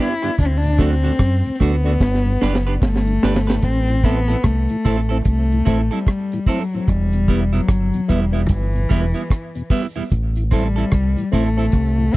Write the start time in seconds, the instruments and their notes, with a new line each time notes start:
Already playing: clean electric guitar B3
0.00 clean electric guitar D4 G4, cello E4
0.22 tonewheel organ G2 D3, clean electric guitar B3 D4 G4, cross-stick
0.38 fingered electric bass D2, cello D4, kick, closed hi-hat, cabasa
0.47 cello C4
0.58 cello D4
0.62 tonewheel organ D2 A2, closed hi-hat, cabasa
0.78 tonewheel organ F#3 A3 D4, clean electric guitar A3 D4 F#4, cello C4, kick, closed hi-hat, cabasa
1.03 tonewheel organ D2 A2, clean electric guitar A3 D4 F#4, closed hi-hat
1.19 fingered electric bass F#2, kick, cross-stick, closed hi-hat
1.43 tonewheel organ D2 A2, closed hi-hat, cabasa
1.55 cello C4
1.60 fingered electric bass D2, tonewheel organ F#3 A3 D4, clean electric guitar A3 D4 F#4, cello B3, kick, closed hi-hat, cabasa
1.84 tonewheel organ A3 D4, clean electric guitar A3 D4 F#4
2.00 fingered electric bass G1, kick, snare, cabasa
2.14 snare
2.25 tonewheel organ G2 D3
2.41 fingered electric bass F#1, tonewheel organ G3 B3 D4, clean electric guitar D4 G4 B4, snare, cabasa
2.55 snare
2.66 clean electric guitar D4 G4 B4, cabasa
2.82 fingered electric bass G1, cello A3, kick, snare
2.96 snare
3.07 tonewheel organ G2 D3, cabasa
3.22 fingered electric bass G1, tonewheel organ G3 B3 D4, clean electric guitar D4 G4 B4, snare, cabasa
3.36 snare
3.47 tonewheel organ G2 D3, clean electric guitar D4 G4 B4, snare
3.62 fingered electric bass A1, cello C4, kick, closed hi-hat, cabasa
3.87 tonewheel organ A2 E3, closed hi-hat, cabasa
4.04 tonewheel organ A3 C4 E4, cello B3, clean electric guitar C4 E4 A4, kick, closed hi-hat, cabasa
4.28 tonewheel organ A2 E3, clean electric guitar C4 E4 A4
4.44 fingered electric bass C2, cello A3, kick, cross-stick, closed hi-hat
4.69 tonewheel organ A2 E3, closed hi-hat, cabasa
4.85 fingered electric bass A1, tonewheel organ A3 C4 E4, clean electric guitar C4 E4 A4, kick, closed hi-hat, cabasa
5.09 clean electric guitar C4 E4 A4, tonewheel organ C4 E4
5.25 fingered electric bass C2, cello A3, kick, closed hi-hat, cabasa
5.52 tonewheel organ A2 E3, closed hi-hat
5.65 fingered electric bass A1, tonewheel organ A3 C4 E4, clean electric guitar C4 E4 A4, kick, closed hi-hat, cabasa
5.91 cello G3, clean electric guitar C4 E4 A4, cabasa
6.07 kick, cross-stick, closed hi-hat
6.31 tonewheel organ A2 E3, closed hi-hat, cabasa
6.46 cello F#3, tonewheel organ A3 C4 E4, clean electric guitar C4 E4 A4, kick, open hi-hat, cabasa
6.74 tonewheel organ A2 E3
6.88 fingered electric bass E1, cello G3, kick, closed hi-hat, cabasa
7.12 tonewheel organ E2 B2, closed hi-hat, cabasa
7.28 clean electric guitar G3 B3 E4, tonewheel organ G3 B3 E4, kick, closed hi-hat, cabasa
7.53 tonewheel organ E2 B2, cello F#3, clean electric guitar G3 B3 E4
7.68 fingered electric bass G1, kick, cross-stick, closed hi-hat
7.93 tonewheel organ E2 B2, closed hi-hat, cabasa
8.08 fingered electric bass E1, tonewheel organ G3 B3 E4, clean electric guitar G3 B3 E4, cello G3, kick, closed hi-hat, cabasa
8.32 clean electric guitar G3 B3 E4, tonewheel organ B3 E4
8.49 fingered electric bass G1, cello E3, kick, closed hi-hat, cabasa
8.74 tonewheel organ E2 B2, closed hi-hat
8.89 fingered electric bass E1, clean electric guitar G3 B3 E4, tonewheel organ G3 B3 E4, kick, closed hi-hat, cabasa
9.14 clean electric guitar G3 B3 E4, closed hi-hat, cabasa
9.30 kick, cross-stick, closed hi-hat
9.55 tonewheel organ E2 B2, closed hi-hat, cabasa
9.70 clean electric guitar G3 B3 E4, tonewheel organ G3 B3 E4, kick, open hi-hat, cabasa
9.96 tonewheel organ E2 B2, clean electric guitar G3 B3 E4
10.11 fingered electric bass A1, kick, closed hi-hat, cabasa
10.35 tonewheel organ A2 E3, closed hi-hat, cabasa
10.51 cello G3, tonewheel organ A3 C4 E4, clean electric guitar C4 E4 A4, kick, closed hi-hat, cabasa
10.76 tonewheel organ A2 E3, clean electric guitar C4 E4 A4
10.92 fingered electric bass C2, kick, cross-stick, closed hi-hat
11.17 tonewheel organ A2 E3, closed hi-hat, cabasa
11.31 fingered electric bass A1, tonewheel organ A3 C4 E4, cello A3, clean electric guitar C4 E4 A4, kick, closed hi-hat, cabasa
11.57 tonewheel organ C4 E4, clean electric guitar C4 E4 A4, closed hi-hat
11.72 fingered electric bass C2, kick, closed hi-hat, cabasa
11.98 tonewheel organ A2 E3, closed hi-hat
12.12 tonewheel organ A3 C4 E4, cello C4, closed hi-hat, cabasa